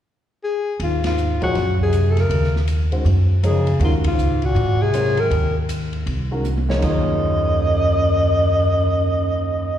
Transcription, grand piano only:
0, 0, Header, 1, 2, 480
1, 0, Start_track
1, 0, Tempo, 376884
1, 1013, Time_signature, 4, 2, 24, 8
1, 12462, End_track
2, 0, Start_track
2, 0, Title_t, "Grand piano"
2, 0, Program_c, 0, 0
2, 1803, Note_on_c, 0, 53, 64
2, 1804, Note_on_c, 0, 58, 58
2, 1810, Note_on_c, 0, 63, 57
2, 1812, Note_on_c, 0, 68, 63
2, 1818, Note_on_c, 0, 73, 67
2, 1958, Note_off_c, 0, 53, 0
2, 1958, Note_off_c, 0, 58, 0
2, 1961, Note_off_c, 0, 63, 0
2, 1962, Note_off_c, 0, 68, 0
2, 1965, Note_off_c, 0, 73, 0
2, 3715, Note_on_c, 0, 51, 54
2, 3717, Note_on_c, 0, 56, 48
2, 3721, Note_on_c, 0, 66, 53
2, 3722, Note_on_c, 0, 61, 52
2, 3725, Note_on_c, 0, 72, 57
2, 3872, Note_off_c, 0, 51, 0
2, 3873, Note_off_c, 0, 56, 0
2, 3875, Note_off_c, 0, 61, 0
2, 3875, Note_off_c, 0, 66, 0
2, 3877, Note_off_c, 0, 72, 0
2, 4366, Note_on_c, 0, 58, 51
2, 4371, Note_on_c, 0, 53, 62
2, 4373, Note_on_c, 0, 63, 57
2, 4383, Note_on_c, 0, 68, 50
2, 4384, Note_on_c, 0, 73, 58
2, 4639, Note_off_c, 0, 58, 0
2, 4642, Note_off_c, 0, 53, 0
2, 4643, Note_off_c, 0, 63, 0
2, 4647, Note_off_c, 0, 68, 0
2, 4648, Note_off_c, 0, 73, 0
2, 4847, Note_on_c, 0, 51, 58
2, 4853, Note_on_c, 0, 56, 58
2, 4859, Note_on_c, 0, 61, 53
2, 4861, Note_on_c, 0, 66, 51
2, 4869, Note_on_c, 0, 70, 65
2, 5120, Note_off_c, 0, 51, 0
2, 5123, Note_off_c, 0, 56, 0
2, 5126, Note_off_c, 0, 61, 0
2, 5127, Note_off_c, 0, 66, 0
2, 5131, Note_off_c, 0, 70, 0
2, 6291, Note_on_c, 0, 54, 53
2, 6291, Note_on_c, 0, 60, 58
2, 6294, Note_on_c, 0, 65, 54
2, 6294, Note_on_c, 0, 70, 49
2, 6300, Note_on_c, 0, 73, 65
2, 6562, Note_off_c, 0, 54, 0
2, 6562, Note_off_c, 0, 60, 0
2, 6564, Note_off_c, 0, 65, 0
2, 6564, Note_off_c, 0, 70, 0
2, 6567, Note_off_c, 0, 73, 0
2, 8036, Note_on_c, 0, 51, 56
2, 8041, Note_on_c, 0, 56, 50
2, 8041, Note_on_c, 0, 61, 57
2, 8046, Note_on_c, 0, 66, 57
2, 8049, Note_on_c, 0, 70, 60
2, 8194, Note_off_c, 0, 51, 0
2, 8196, Note_off_c, 0, 56, 0
2, 8196, Note_off_c, 0, 61, 0
2, 8199, Note_off_c, 0, 66, 0
2, 8200, Note_off_c, 0, 70, 0
2, 8515, Note_on_c, 0, 53, 62
2, 8519, Note_on_c, 0, 58, 61
2, 8522, Note_on_c, 0, 63, 61
2, 8522, Note_on_c, 0, 68, 61
2, 8533, Note_on_c, 0, 73, 76
2, 8635, Note_on_c, 0, 39, 69
2, 8663, Note_on_c, 0, 51, 57
2, 8673, Note_off_c, 0, 53, 0
2, 8675, Note_off_c, 0, 58, 0
2, 8677, Note_off_c, 0, 63, 0
2, 8677, Note_off_c, 0, 68, 0
2, 8682, Note_off_c, 0, 73, 0
2, 8693, Note_on_c, 0, 54, 58
2, 8724, Note_on_c, 0, 65, 56
2, 8755, Note_on_c, 0, 68, 56
2, 8787, Note_on_c, 0, 73, 69
2, 12462, Note_off_c, 0, 39, 0
2, 12462, Note_off_c, 0, 51, 0
2, 12462, Note_off_c, 0, 54, 0
2, 12462, Note_off_c, 0, 65, 0
2, 12462, Note_off_c, 0, 68, 0
2, 12462, Note_off_c, 0, 73, 0
2, 12462, End_track
0, 0, End_of_file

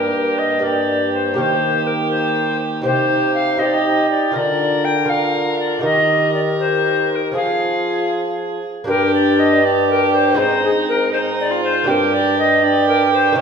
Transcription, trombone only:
0, 0, Header, 1, 2, 480
1, 0, Start_track
1, 0, Tempo, 496689
1, 1323, Time_signature, 6, 3, 24, 8
1, 5638, Tempo, 507614
1, 8518, Tempo, 499168
1, 12876, End_track
2, 0, Start_track
2, 0, Title_t, "Trombone"
2, 0, Program_c, 0, 57
2, 0, Note_on_c, 0, 58, 56
2, 584, Note_off_c, 0, 58, 0
2, 604, Note_on_c, 0, 58, 54
2, 1310, Note_off_c, 0, 58, 0
2, 1326, Note_on_c, 0, 58, 68
2, 2733, Note_off_c, 0, 58, 0
2, 2763, Note_on_c, 0, 63, 64
2, 3441, Note_off_c, 0, 63, 0
2, 3481, Note_on_c, 0, 63, 63
2, 4192, Note_on_c, 0, 65, 64
2, 4207, Note_off_c, 0, 63, 0
2, 4752, Note_off_c, 0, 65, 0
2, 4916, Note_on_c, 0, 65, 57
2, 5638, Note_on_c, 0, 67, 66
2, 5653, Note_off_c, 0, 65, 0
2, 7076, Note_off_c, 0, 67, 0
2, 7086, Note_on_c, 0, 65, 54
2, 8258, Note_off_c, 0, 65, 0
2, 8526, Note_on_c, 0, 62, 74
2, 9206, Note_off_c, 0, 62, 0
2, 9246, Note_on_c, 0, 62, 66
2, 9972, Note_on_c, 0, 60, 71
2, 9986, Note_off_c, 0, 62, 0
2, 10665, Note_off_c, 0, 60, 0
2, 10671, Note_on_c, 0, 60, 67
2, 11402, Note_on_c, 0, 62, 79
2, 11416, Note_off_c, 0, 60, 0
2, 12117, Note_off_c, 0, 62, 0
2, 12123, Note_on_c, 0, 62, 68
2, 12823, Note_off_c, 0, 62, 0
2, 12840, Note_on_c, 0, 63, 92
2, 12876, Note_off_c, 0, 63, 0
2, 12876, End_track
0, 0, End_of_file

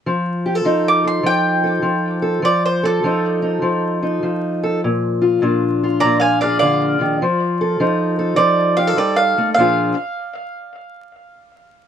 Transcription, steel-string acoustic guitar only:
0, 0, Header, 1, 2, 480
1, 0, Start_track
1, 0, Tempo, 594059
1, 44, Time_signature, 4, 2, 24, 8
1, 9597, End_track
2, 0, Start_track
2, 0, Title_t, "Steel-string acoustic guitar"
2, 0, Program_c, 0, 25
2, 50, Note_on_c, 0, 53, 76
2, 369, Note_on_c, 0, 67, 61
2, 445, Note_off_c, 0, 67, 0
2, 445, Note_on_c, 0, 69, 48
2, 521, Note_off_c, 0, 53, 0
2, 524, Note_on_c, 0, 53, 76
2, 528, Note_on_c, 0, 63, 65
2, 832, Note_off_c, 0, 69, 0
2, 842, Note_on_c, 0, 69, 57
2, 992, Note_off_c, 0, 53, 0
2, 996, Note_on_c, 0, 53, 71
2, 1312, Note_off_c, 0, 69, 0
2, 1322, Note_on_c, 0, 69, 54
2, 1471, Note_off_c, 0, 53, 0
2, 1474, Note_on_c, 0, 53, 71
2, 1786, Note_off_c, 0, 69, 0
2, 1796, Note_on_c, 0, 69, 67
2, 1943, Note_off_c, 0, 69, 0
2, 1948, Note_off_c, 0, 63, 0
2, 1955, Note_off_c, 0, 53, 0
2, 1958, Note_on_c, 0, 53, 78
2, 2290, Note_on_c, 0, 69, 62
2, 2450, Note_off_c, 0, 53, 0
2, 2454, Note_on_c, 0, 53, 75
2, 2465, Note_on_c, 0, 63, 65
2, 2756, Note_off_c, 0, 63, 0
2, 2766, Note_on_c, 0, 63, 56
2, 2922, Note_off_c, 0, 53, 0
2, 2925, Note_on_c, 0, 53, 72
2, 3243, Note_off_c, 0, 63, 0
2, 3253, Note_on_c, 0, 63, 57
2, 3413, Note_off_c, 0, 53, 0
2, 3416, Note_on_c, 0, 53, 70
2, 3731, Note_off_c, 0, 69, 0
2, 3744, Note_on_c, 0, 69, 70
2, 3874, Note_off_c, 0, 63, 0
2, 3879, Note_off_c, 0, 69, 0
2, 3912, Note_on_c, 0, 46, 71
2, 4214, Note_on_c, 0, 65, 57
2, 4369, Note_off_c, 0, 46, 0
2, 4379, Note_on_c, 0, 46, 79
2, 4386, Note_on_c, 0, 62, 62
2, 4712, Note_off_c, 0, 65, 0
2, 4715, Note_on_c, 0, 65, 55
2, 4856, Note_off_c, 0, 46, 0
2, 4876, Note_on_c, 0, 46, 71
2, 5201, Note_on_c, 0, 68, 59
2, 5348, Note_on_c, 0, 50, 66
2, 5659, Note_off_c, 0, 50, 0
2, 5663, Note_on_c, 0, 51, 65
2, 5802, Note_off_c, 0, 62, 0
2, 5806, Note_off_c, 0, 46, 0
2, 5809, Note_off_c, 0, 68, 0
2, 5819, Note_off_c, 0, 51, 0
2, 5831, Note_off_c, 0, 53, 0
2, 5834, Note_on_c, 0, 53, 79
2, 6149, Note_on_c, 0, 69, 61
2, 6292, Note_off_c, 0, 53, 0
2, 6302, Note_on_c, 0, 53, 72
2, 6304, Note_off_c, 0, 65, 0
2, 6307, Note_on_c, 0, 63, 64
2, 6606, Note_off_c, 0, 69, 0
2, 6616, Note_on_c, 0, 69, 68
2, 6753, Note_off_c, 0, 53, 0
2, 6763, Note_on_c, 0, 53, 75
2, 7088, Note_off_c, 0, 69, 0
2, 7091, Note_on_c, 0, 67, 54
2, 7169, Note_off_c, 0, 67, 0
2, 7169, Note_on_c, 0, 69, 61
2, 7243, Note_off_c, 0, 53, 0
2, 7247, Note_on_c, 0, 55, 64
2, 7567, Note_off_c, 0, 55, 0
2, 7580, Note_on_c, 0, 57, 69
2, 7719, Note_off_c, 0, 63, 0
2, 7730, Note_off_c, 0, 69, 0
2, 7737, Note_off_c, 0, 57, 0
2, 7737, Note_on_c, 0, 46, 69
2, 7744, Note_on_c, 0, 53, 63
2, 7748, Note_on_c, 0, 62, 67
2, 7758, Note_on_c, 0, 65, 60
2, 7761, Note_on_c, 0, 68, 55
2, 8020, Note_off_c, 0, 46, 0
2, 8024, Note_off_c, 0, 53, 0
2, 8025, Note_off_c, 0, 62, 0
2, 8031, Note_off_c, 0, 65, 0
2, 8031, Note_off_c, 0, 68, 0
2, 9597, End_track
0, 0, End_of_file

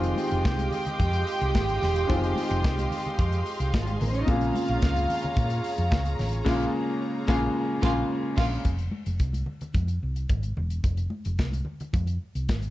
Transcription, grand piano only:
0, 0, Header, 1, 2, 480
1, 0, Start_track
1, 0, Key_signature, -4, "minor"
1, 0, Tempo, 547445
1, 1833, Time_signature, 4, 2, 24, 8
1, 11136, End_track
2, 0, Start_track
2, 0, Title_t, "Grand piano"
2, 0, Program_c, 0, 0
2, 0, Note_on_c, 0, 51, 82
2, 0, Note_on_c, 0, 56, 72
2, 0, Note_on_c, 0, 60, 74
2, 0, Note_on_c, 0, 65, 90
2, 74, Control_c, 0, 64, 127
2, 1792, Note_off_c, 0, 51, 0
2, 1796, Note_off_c, 0, 56, 0
2, 1801, Note_off_c, 0, 60, 0
2, 1806, Note_off_c, 0, 65, 0
2, 1819, Note_on_c, 0, 51, 72
2, 1828, Note_on_c, 0, 56, 73
2, 1836, Note_on_c, 0, 60, 75
2, 1843, Note_on_c, 0, 65, 96
2, 3709, Note_off_c, 0, 51, 0
2, 3714, Note_off_c, 0, 56, 0
2, 3718, Note_off_c, 0, 60, 0
2, 3721, Note_off_c, 0, 65, 0
2, 3735, Note_on_c, 0, 48, 70
2, 3746, Note_on_c, 0, 56, 72
2, 3755, Note_on_c, 0, 58, 70
2, 3763, Control_c, 0, 64, 0
2, 3763, Note_on_c, 0, 65, 87
2, 3796, Note_on_c, 0, 49, 78
2, 3800, Note_off_c, 0, 48, 0
2, 3892, Control_c, 0, 64, 127
2, 5629, Note_off_c, 0, 56, 0
2, 5633, Note_off_c, 0, 58, 0
2, 5637, Note_off_c, 0, 65, 0
2, 5638, Note_off_c, 0, 49, 0
2, 5651, Note_on_c, 0, 49, 103
2, 5659, Note_on_c, 0, 56, 104
2, 5672, Note_on_c, 0, 58, 106
2, 5675, Note_on_c, 0, 65, 105
2, 5821, Note_off_c, 0, 49, 0
2, 5825, Note_off_c, 0, 56, 0
2, 5832, Note_off_c, 0, 58, 0
2, 5834, Note_off_c, 0, 65, 0
2, 6378, Note_on_c, 0, 49, 106
2, 6385, Note_on_c, 0, 56, 100
2, 6387, Note_on_c, 0, 58, 98
2, 6387, Note_on_c, 0, 80, 101
2, 6394, Note_on_c, 0, 65, 97
2, 6544, Note_off_c, 0, 49, 0
2, 6548, Note_off_c, 0, 56, 0
2, 6549, Note_off_c, 0, 58, 0
2, 6549, Note_off_c, 0, 80, 0
2, 6553, Note_off_c, 0, 65, 0
2, 6859, Note_on_c, 0, 49, 91
2, 6861, Note_on_c, 0, 56, 92
2, 6865, Note_on_c, 0, 80, 89
2, 6868, Note_on_c, 0, 58, 93
2, 6870, Note_on_c, 0, 65, 100
2, 7024, Note_off_c, 0, 49, 0
2, 7025, Note_off_c, 0, 56, 0
2, 7028, Note_off_c, 0, 80, 0
2, 7029, Note_off_c, 0, 58, 0
2, 7030, Note_off_c, 0, 65, 0
2, 7595, Control_c, 0, 64, 0
2, 11136, End_track
0, 0, End_of_file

